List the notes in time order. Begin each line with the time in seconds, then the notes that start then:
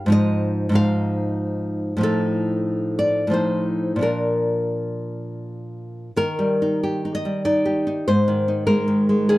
0.06 G#2 F3 D#4
0.12 D#5
0.69 G#2 F3
0.73 D#4 F5
1.97 A2 F3
2.01 D#4 A4
2.99 D5
3.27 A2 F3
3.31 D#4 C5
3.96 A#2 F3
4.01 D4 A#4
6.16 D#3 A#4
6.39 G3
6.62 D#4
6.83 G4
7.05 D#4
7.15 D#5
7.25 G3
7.45 D#4 D5
7.65 G4
7.87 D#4
8.08 G#2 C5
8.28 D#3
8.48 D#4
8.67 G#3 A#4
8.88 D#3
9.09 G#3
9.29 D#3 G#4